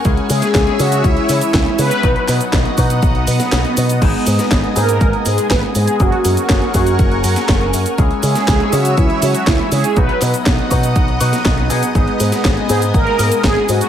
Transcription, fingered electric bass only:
\new Staff \with { instrumentName = "Fingered electric bass" } { \clef bass \time 4/4 \key gis \minor \tempo 4 = 121 cis,8 cis8 cis,8 cis8 cis,8 cis8 cis,8 cis8 | b,,8 b,8 b,,8 b,8 b,,8 b,8 b,,8 b,8 | gis,,8 gis,8 gis,,8 gis,8 gis,,8 gis,8 gis,,8 gis,8 | fis,,8 fis,8 fis,,8 fis,8 fis,,8 fis,8 fis,,8 fis,8 |
cis,8 cis8 cis,8 cis8 cis,8 cis8 cis,8 cis8 | b,,8 b,8 b,,8 b,8 b,,8 b,8 b,,8 b,8 | gis,,8 gis,8 gis,,8 gis,8 gis,,8 gis,8 gis,,8 gis,8 | }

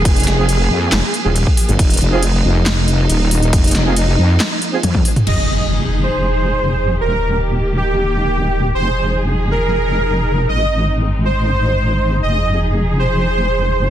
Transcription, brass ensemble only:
\new Staff \with { instrumentName = "Brass ensemble" } { \time 4/4 \key f \minor \tempo 4 = 138 r8. <c' f' aes'>16 r4. r16 <c' f' aes'>16 r4 | r8. <c' f' aes'>16 r2. | r8. <c' f' aes'>16 r4. r16 <c' f' aes'>16 r4 | r1 |
r1 | r1 | r1 | r1 | }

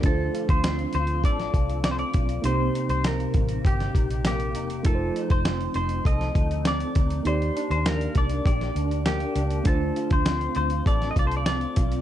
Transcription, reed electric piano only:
\new Staff \with { instrumentName = "Reed electric piano" } { \time 4/4 \key d \phrygian \tempo 4 = 100 <a d' f' c''>1 | <bes ees' g' c''>1 | <a ees' f' bes' c''>1 | <bes ees' g' d''>1 |
<a d' f' c''>1 | }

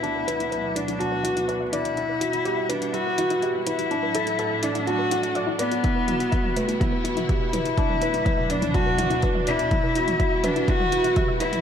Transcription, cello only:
\new Staff \with { instrumentName = "Cello" } { \time 4/4 \key e \minor \tempo 4 = 124 e'4. d'8 fis'4 r8 e'8~ | e'4. d'8 fis'4 r8 e'8~ | e'4. d'8 fis'4 r8 b8~ | b4. a8 b4 r8 e'8~ |
e'4. d'8 fis'4 r8 e'8~ | e'4. d'8 fis'4 r8 e'8 | }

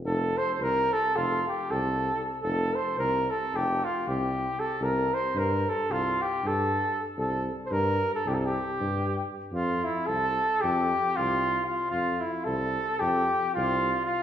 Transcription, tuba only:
\new Staff \with { instrumentName = "Tuba" } { \clef bass \time 9/8 \key f \major \tempo 4. = 76 f,,4 c,4 f,,4 c,4. | f,,4 c,4 f,,4 c,4. | c,4 g,4 c,4 g,4. | c,4 g,4 c,4 g,4. |
f,4 c,4 f,4 c,4. | f,4 c,4 f,4 c,4. | }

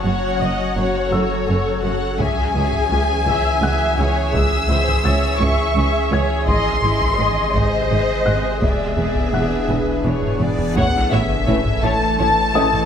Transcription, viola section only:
\new Staff \with { instrumentName = "Viola section" } { \time 6/8 \key cis \minor \tempo 4. = 56 cis''8 dis''8 cis''8 a'4. | gis'4. e''8 e''8 cis''8 | gis'8 bis'8 cis''8 e''8 e''8 cis''8 | dis''8 e'8 dis''8 bis'4. |
gis'2~ gis'16 r8. | \key a \lydian <e' cis''>8 <e' cis''>8 <e' cis''>8 <e' cis''>8 <e' cis''>8 <e' cis''>8 | }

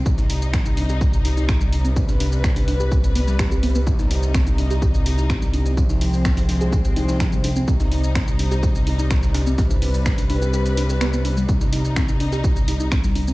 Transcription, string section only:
\new Staff \with { instrumentName = "String section" } { \time 4/4 \key c \minor \tempo 4 = 126 << { ees'1 | b'1 | ees'1 | c'1 |
ees'1 | b'1 | ees'1 | } \\ { <c g>1~ | <c g>1~ | <c g>1 | <f aes>1 |
<c g>1~ | <c g>1~ | <c g>1 | } >> }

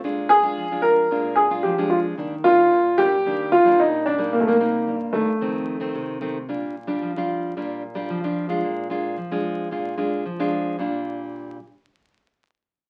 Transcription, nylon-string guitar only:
\new Staff \with { instrumentName = "Nylon-string guitar" } { \time 4/4 \key bes \major \tempo 4 = 112 << { <aes d' f'>8 r16 <aes d' f'>8 <aes d' f'>8. <aes d' f'>8. <aes d' f'>8 <aes d' f'>8. | <g bes d'>16 r16 <g bes d'>8. r16 <g bes d'>16 r16 <g bes d'>8 r16 <g bes d'>8. <g bes d'>16 <g bes ees'>16~ | <g bes ees'>16 <g bes ees'>16 <g bes ees'>8. r16 <g bes ees'>16 r16 <ees a c'>8. <ees a c'>8. <ees a c'>16 r16 | <g d' f'>8 r16 <g d' f'>8 <g d' f'>8. <g d' f'>8 r16 <g d' f'>8 <g d' f'>8 <aes d' f'>16~ |
<aes d' f'>8 <aes d' f'>8 r16 <aes d' f'>8. <aes d' f'>8 <aes d' f'>8 r16 <aes d' f'>8. | <bes, g d' f'>8 r2. r8 | } \\ { bes,4 f4 bes,4 f4 | ees4 bes,4 ees4 bes,4 | c4 g,4 f,4 c4 | bes,4 f4 bes,4 f4 |
bes,4 f4 bes,4 f4 | r1 | } >> }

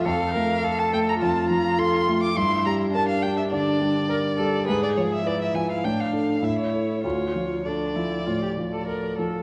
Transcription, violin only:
\new Staff \with { instrumentName = "Violin" } { \time 4/4 \key d \minor \tempo 4 = 103 f''4~ f''16 a''16 g''16 bes''16 a''8 bes''8 c'''8. d'''16 | c'''8 bes''8 a''16 f''16 g''16 e''16 d''2 | b'16 d''16 cis''16 e''16 d''16 e''16 gis''16 f''16 g''16 f''8. e''16 cis''8. | cis''4 d''2~ d''8 r8 | }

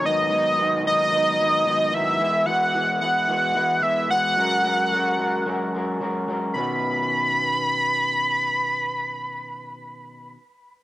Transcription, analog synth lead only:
\new Staff \with { instrumentName = "Analog synth lead" } { \time 4/4 \key b \major \tempo 4 = 111 dis''4. dis''2 e''8~ | e''8 fis''4 fis''4. e''8 fis''8~ | fis''2. r4 | b''1~ |
b''1 | }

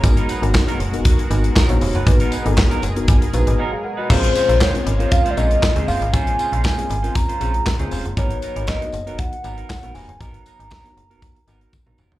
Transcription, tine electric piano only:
\new Staff \with { instrumentName = "Tine electric piano" } { \time 4/4 \key bes \phrygian \tempo 4 = 118 << { r1 | r2. <ges' ees''>16 <aes' f''>16 <bes' ges''>16 <ges' ees''>16~ | <ges' ees''>16 r2. r8. | r1 |
r1 | r1 | } \\ { <ces' ees' ges' bes'>8 r16 <ces' ees' ges' bes'>8. r16 <ces' ees' ges' bes'>8 r16 <ces' ees' ges' bes'>8 r16 <ces' ees' ges' des''>8 r16 | <ces' ees' ges' ces''>8 r16 <ces' ees' ges' a' bes'>8. r16 <ces' ees' ges' bes'>8 r16 <ces' ees' ges' ces''>8 r4 | <c' des' f' aes'>4 r16 <c' des' f' bes'>16 r16 <c' des' f' bes'>8 r16 <c' des' f' bes'>8 r16 <c' des' f' aes'>8 r16 | <c' des' f' aes'>4 r16 <c' des' f' aes'>16 r16 <c' des' f' bes'>8 r16 <c' des' f' aes'>8 r16 <c' des' f' aes'>8 r16 |
<ces' ees' ges' bes'>4 r16 <ces' ees' ges' bes'>16 r16 <ces' ees' ges' bes'>8 r16 <ces' ees' ges' bes'>8 r16 <ces' ees' ges' bes'>8 r16 | <ces' ees' ges' bes'>4 r16 <ces' ees' ges' bes'>16 r16 <ces' ees' ges' bes'>8 r16 <ces' ees' ges' bes'>8 r16 <ces' ees' ges' bes'>8 r16 | } >> }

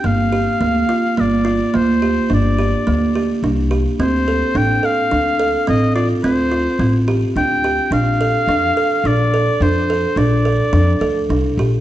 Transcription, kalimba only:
\new Staff \with { instrumentName = "Kalimba" } { \time 7/4 \key g \minor \tempo 4 = 107 bes8 g'8 bes8 f'8 bes8 f'8 bes8 g'8 d'8 g'8 bes8 g'8 d'8 g'8 | c'8 a'8 d'8 a'8 d'8 a'8 c'8 f'8 c'8 f'8 c'8 g'8 d'8 g'8 | d'8 a'8 d'8 a'8 d'8 a'8 d'8 a'8 d'8 a'8 d'8 a'8 d'8 g'8 | }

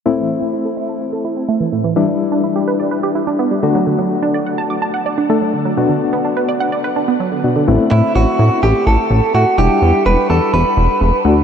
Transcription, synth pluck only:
\new Staff \with { instrumentName = "Synth pluck" } { \time 4/4 \key e \minor \tempo 4 = 126 a,16 e16 r16 c'16 e'16 a'16 e''16 a''16 e''16 a'16 e'16 c'16 a16 e16 a,16 e16 | e16 g16 r16 d'16 e'16 g'16 b'16 d''16 b'16 g'16 e'16 d'16 b16 g16 d16 fis16 | d16 fis16 r16 d'16 d''16 fis''16 a''16 d'''16 a''16 fis''16 d''16 d'16 a16 fis16 d16 fis16 | b,16 d16 r16 b16 d'16 b'16 d''16 fis''16 d''16 b'16 d'16 b16 fis16 d16 b,16 d16 |
r1 | r1 | }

